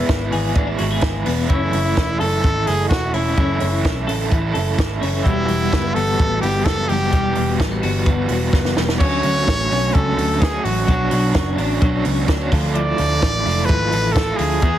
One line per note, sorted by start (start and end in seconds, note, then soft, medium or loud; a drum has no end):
0.00 0.30 G#3 soft
0.00 0.31 B3 soft
0.00 1.25 B3 medium
0.00 0.32 E4 medium
0.00 0.31 G#4 medium
0.09 0.29 G#1 medium
0.09 0.55 E4 medium
0.09 kick loud
0.09 snare medium
0.09 closed hi-hat medium
0.31 0.53 G#1 medium
0.31 0.54 E3 medium
0.31 0.55 G#3 medium
0.31 0.56 B3 medium
0.31 0.56 E4 medium
0.31 0.78 G#4 medium
0.31 open hi-hat medium
0.55 0.76 A1 medium
0.55 0.78 E3 medium
0.55 0.79 G#3 medium
0.55 0.80 B3 medium
0.55 0.67 D4 medium
0.55 0.81 E4 medium
0.55 kick loud
0.55 closed hi-hat medium
0.67 1.02 E4 soft
0.78 1.00 G#1 medium
0.78 1.25 E3 medium
0.78 1.25 G#3 medium
0.78 1.26 B3 medium
0.78 1.28 E4 medium
0.78 0.91 F#4 medium
0.78 open hi-hat medium
0.91 1.54 G#4 soft
1.01 1.23 G#1 medium
1.01 1.96 E4 medium
1.01 kick loud
1.01 snare loud
1.01 closed hi-hat medium
1.25 1.47 E1 medium
1.25 1.49 E3 medium
1.25 1.50 G#3 medium
1.25 1.49 B3 medium
1.25 1.50 B3 medium
1.25 1.50 E4 medium
1.25 open hi-hat medium
1.49 1.70 F#1 medium
1.49 1.85 F#2 medium
1.49 1.85 C#3 medium
1.49 1.86 E3 medium
1.49 1.85 A3 medium
1.49 1.72 C#4 medium
1.49 2.21 E4 medium
1.49 1.84 E4 medium
1.49 kick medium
1.49 closed hi-hat medium
1.73 1.94 F#1 medium
1.73 3.13 C#4 medium
1.73 open hi-hat medium
1.85 2.20 E3 soft
1.85 2.21 A3 soft
1.85 2.20 E4 soft
1.96 2.17 E1 medium
1.96 2.43 E4 medium
1.96 kick loud
1.96 snare medium
1.96 closed hi-hat medium
2.20 2.41 F#1 medium
2.20 2.44 F#2 medium
2.20 2.43 C#3 medium
2.20 2.44 E3 medium
2.20 2.45 A3 medium
2.20 2.45 E4 medium
2.20 2.69 A4 loud
2.20 2.65 A4 medium
2.20 open hi-hat medium
2.43 2.64 G#1 medium
2.43 2.66 C#3 soft
2.43 2.67 E3 medium
2.43 2.67 A3 medium
2.43 2.90 E4 medium
2.43 2.68 E4 medium
2.43 kick loud
2.43 closed hi-hat medium
2.66 2.88 F#1 medium
2.66 3.12 C#3 medium
2.66 3.14 E3 medium
2.66 3.14 A3 medium
2.66 3.16 E4 medium
2.66 2.89 G#4 medium
2.66 4.06 A4 medium
2.66 open hi-hat medium
2.89 3.11 E1 medium
2.89 3.83 E4 medium
2.89 3.15 F#4 medium
2.89 kick loud
2.89 snare loud
2.89 closed hi-hat medium
3.13 3.34 E1 medium
3.13 3.37 C#3 medium
3.13 3.37 E3 medium
3.13 3.38 A3 medium
3.13 3.36 C#4 medium
3.13 3.84 E4 medium
3.13 3.38 E4 medium
3.13 open hi-hat medium
3.37 3.58 F#1 medium
3.37 3.73 F#2 medium
3.37 3.73 C#3 medium
3.37 3.73 E3 medium
3.37 3.73 A3 medium
3.37 3.59 C#4 medium
3.37 3.71 E4 medium
3.37 kick medium
3.37 closed hi-hat medium
3.60 3.82 F#1 medium
3.60 5.00 C#4 medium
3.60 open hi-hat medium
3.73 4.07 E3 soft
3.73 4.07 A3 soft
3.73 4.08 E4 medium
3.84 4.05 B1 medium
3.84 4.30 E4 medium
3.84 kick medium
3.84 snare loud
3.84 closed hi-hat medium
4.07 4.28 A1 medium
4.07 4.31 F#2 medium
4.07 4.30 C#3 medium
4.07 4.30 E3 medium
4.07 4.32 A3 medium
4.07 4.32 E4 medium
4.07 4.53 A4 medium
4.07 open hi-hat medium
4.31 4.52 A1 medium
4.31 4.54 C#3 medium
4.31 4.55 E3 medium
4.31 4.56 A3 medium
4.31 4.77 E4 medium
4.31 4.56 E4 medium
4.31 kick loud
4.31 closed hi-hat medium
4.54 4.75 F#1 medium
4.54 5.00 C#3 medium
4.54 5.02 E3 medium
4.54 5.02 A3 medium
4.54 5.04 E4 medium
4.54 5.30 A4 medium
4.54 open hi-hat medium
4.78 4.98 G#1 medium
4.78 5.95 E4 medium
4.78 kick loud
4.78 snare loud
4.78 closed hi-hat medium
5.01 5.22 F#1 medium
5.01 5.24 C#3 medium
5.01 5.24 E3 medium
5.01 5.25 A3 medium
5.01 5.29 C#4 medium
5.01 5.26 E4 medium
5.01 open hi-hat medium
5.24 5.46 E1 medium
5.24 5.60 E3 medium
5.24 5.47 G3 medium
5.24 5.61 G3 medium
5.24 5.60 B3 medium
5.24 5.96 E4 medium
5.24 5.59 F#4 medium
5.24 kick medium
5.24 closed hi-hat medium
5.48 5.69 E1 medium
5.48 6.87 G3 medium
5.48 open hi-hat medium
5.60 5.94 G3 soft
5.60 5.95 B3 soft
5.60 5.95 F#4 soft
5.72 5.92 F#1 medium
5.72 6.18 B3 medium
5.72 kick loud
5.72 snare loud
5.72 closed hi-hat medium
5.94 6.16 G1 medium
5.94 6.18 E3 medium
5.94 6.19 G3 medium
5.94 6.19 B3 medium
5.94 6.42 F#4 medium
5.94 6.20 F#4 medium
5.94 6.41 A4 loud
5.94 open hi-hat medium
6.19 6.39 A1 medium
6.19 6.42 E3 soft
6.19 6.43 G3 medium
6.19 6.65 B3 medium
6.19 6.44 B3 medium
6.19 6.44 F#4 medium
6.19 kick loud
6.19 closed hi-hat medium
6.41 6.62 G1 medium
6.41 6.88 E3 medium
6.41 6.89 G3 medium
6.41 6.91 B3 medium
6.41 6.54 E4 medium
6.41 6.66 G4 medium
6.41 open hi-hat medium
6.46 6.92 F#4 medium
6.65 6.86 F#1 medium
6.65 6.77 A3 medium
6.65 6.90 A4 medium
6.65 kick loud
6.65 snare loud
6.65 closed hi-hat medium
6.78 7.59 B3 soft
6.89 7.09 F#1 medium
6.89 7.13 E3 medium
6.89 7.11 G3 medium
6.89 7.13 G3 medium
6.89 7.14 B3 medium
6.89 7.59 G4 medium
6.89 open hi-hat medium
6.93 7.14 F#4 medium
7.12 7.33 E1 medium
7.12 7.49 E3 medium
7.12 7.34 G3 medium
7.12 7.49 G3 medium
7.12 7.48 B3 medium
7.12 kick medium
7.12 closed hi-hat medium
7.35 7.57 E1 medium
7.35 8.75 G3 medium
7.35 open hi-hat medium
7.48 7.83 G3 soft
7.48 7.84 B3 medium
7.48 7.83 F#4 medium
7.59 7.80 A1 medium
7.59 7.71 A3 medium
7.59 kick medium
7.59 snare loud
7.59 closed hi-hat medium
7.71 8.05 B3 soft
7.82 8.03 G1 medium
7.82 8.06 E3 medium
7.82 8.07 G3 medium
7.82 8.07 B3 medium
7.82 8.29 F#4 medium
7.82 8.08 F#4 medium
7.82 open hi-hat medium
8.06 8.26 G1 medium
8.06 8.29 E3 medium
8.06 8.30 G3 medium
8.06 8.52 B3 medium
8.06 8.31 B3 medium
8.06 8.32 F#4 medium
8.06 kick loud
8.06 closed hi-hat medium
8.29 8.50 E1 medium
8.29 8.76 E3 medium
8.29 8.76 G3 medium
8.29 8.78 B3 medium
8.29 9.00 F#4 medium
8.29 open hi-hat medium
8.33 8.79 F#4 medium
8.53 8.73 F#1 medium
8.53 9.05 B3 medium
8.53 kick loud
8.53 snare soft
8.65 snare medium
8.77 8.97 E1 medium
8.77 9.00 E3 medium
8.77 8.99 G3 medium
8.77 9.01 G3 medium
8.77 9.01 B3 medium
8.77 9.02 F#4 medium
8.77 snare medium
8.89 snare medium
9.00 9.20 D2 medium
9.00 9.23 D3 medium
9.00 9.23 F#3 medium
9.00 9.24 A3 medium
9.00 9.69 C#4 medium
9.00 9.24 C#4 medium
9.00 9.25 F#4 medium
9.00 9.95 C#5 loud
9.00 kick loud
9.00 crash medium
9.23 9.44 D2 medium
9.23 9.70 D3 medium
9.23 9.94 F#3 medium
9.23 9.71 A3 medium
9.23 9.72 C#4 medium
9.23 9.73 F#4 medium
9.23 open hi-hat medium
9.47 9.67 A1 medium
9.47 10.16 A3 medium
9.47 kick medium
9.47 snare loud
9.47 closed hi-hat medium
9.70 9.91 B1 medium
9.70 9.93 D3 medium
9.70 9.94 A3 medium
9.70 10.40 C#4 medium
9.70 9.95 C#4 medium
9.70 9.95 F#4 medium
9.70 open hi-hat medium
9.94 10.15 C#2 medium
9.94 10.17 D3 medium
9.94 10.62 F#3 medium
9.94 10.17 A3 medium
9.94 10.18 C#4 medium
9.94 10.18 F#4 medium
9.94 10.43 A4 medium
9.94 kick loud
9.94 closed hi-hat medium
10.17 10.57 D2 medium
10.17 10.53 D3 medium
10.17 10.92 A3 medium
10.17 10.53 A3 medium
10.17 10.53 C#4 medium
10.17 10.51 F#4 medium
10.17 open hi-hat medium
10.40 10.52 B3 medium
10.40 10.66 G#4 medium
10.40 kick loud
10.40 snare loud
10.40 closed hi-hat medium
10.52 10.89 A3 soft
10.52 10.87 C#4 medium
10.52 10.89 C#4 soft
10.52 10.88 F#4 medium
10.63 10.85 A1 medium
10.63 10.86 F#3 medium
10.63 11.58 F#4 medium
10.63 open hi-hat medium
10.87 11.08 B1 medium
10.87 11.09 F#3 medium
10.87 11.12 B3 medium
10.87 11.57 D4 medium
10.87 11.12 D4 medium
10.87 11.13 F#4 medium
10.87 kick medium
10.87 closed hi-hat medium
10.92 11.13 C#5 medium
11.11 11.31 B1 medium
11.11 11.59 B2 medium
11.11 11.80 F#3 medium
11.11 11.59 F#3 medium
11.11 11.57 B3 medium
11.11 11.59 D4 medium
11.11 11.59 F#4 medium
11.11 11.60 C#5 medium
11.11 open hi-hat medium
11.34 11.55 F#1 medium
11.34 12.04 C#4 medium
11.34 kick loud
11.34 snare loud
11.34 closed hi-hat medium
11.57 11.78 A1 medium
11.57 11.81 B3 medium
11.57 12.28 D4 medium
11.57 11.82 D4 medium
11.57 11.83 F#4 medium
11.57 open hi-hat medium
11.61 11.83 C#5 medium
11.81 12.02 B1 medium
11.81 12.51 F#3 medium
11.81 12.05 B3 medium
11.81 12.06 D4 medium
11.81 12.06 F#4 medium
11.81 12.06 C#5 medium
11.81 kick loud
11.81 closed hi-hat medium
12.05 12.25 C#2 medium
12.05 12.40 B2 medium
12.05 12.41 F#3 medium
12.05 12.41 B3 medium
12.05 12.56 C#4 medium
12.05 12.41 D4 medium
12.05 12.40 F#4 medium
12.05 12.39 C#5 medium
12.05 open hi-hat medium
12.28 12.48 D2 medium
12.28 12.75 D4 medium
12.28 kick loud
12.28 snare loud
12.28 closed hi-hat medium
12.40 12.52 B3 soft
12.40 12.52 D4 soft
12.40 12.52 F#4 medium
12.40 12.52 C#5 medium
12.51 12.92 D2 loud
12.51 12.98 D3 medium
12.51 12.73 F3 medium
12.51 12.99 A3 medium
12.51 12.99 F4 medium
12.51 12.99 A4 loud
12.51 kick loud
12.51 open hi-hat medium
12.74 12.97 F3 medium
12.74 13.45 E4 medium
12.74 13.67 D5 loud
12.74 closed hi-hat medium
12.98 13.19 D2 medium
12.98 13.46 D3 medium
12.98 13.68 F3 medium
12.98 13.46 A3 medium
12.98 13.46 F4 medium
12.98 13.47 A4 medium
12.98 open hi-hat medium
13.22 13.42 A1 medium
13.22 13.91 A3 medium
13.22 kick loud
13.22 snare loud
13.22 closed hi-hat medium
13.45 13.66 F1 medium
13.45 13.67 E3 medium
13.45 13.68 A3 medium
13.45 14.15 E4 medium
13.45 13.69 F4 medium
13.45 13.70 A4 medium
13.45 open hi-hat medium
13.66 13.89 G#1 medium
13.66 13.92 E3 medium
13.66 14.37 F3 medium
13.66 14.14 B4 loud
13.66 kick loud
13.70 13.92 A3 medium
13.70 13.92 F4 medium
13.70 13.92 A4 medium
13.70 closed hi-hat medium
13.92 14.32 A1 medium
13.92 14.27 D3 medium
13.92 14.67 A3 medium
13.92 14.28 A3 medium
13.92 14.27 F4 medium
13.92 14.26 A4 medium
13.92 open hi-hat medium
14.12 14.67 E4 medium
14.12 14.37 A4 medium
14.12 kick loud
14.12 closed hi-hat medium
14.17 snare loud
14.28 14.63 A3 soft
14.28 14.63 F4 soft
14.28 14.62 A4 medium
14.36 14.62 D2 medium
14.36 14.61 F3 medium
14.36 14.79 G#4 medium
14.36 open hi-hat medium
14.62 14.79 E2 loud
14.62 14.79 E3 medium
14.62 14.79 B3 medium
14.62 14.79 E4 medium
14.62 14.79 G#4 medium
14.62 kick loud
14.62 closed hi-hat medium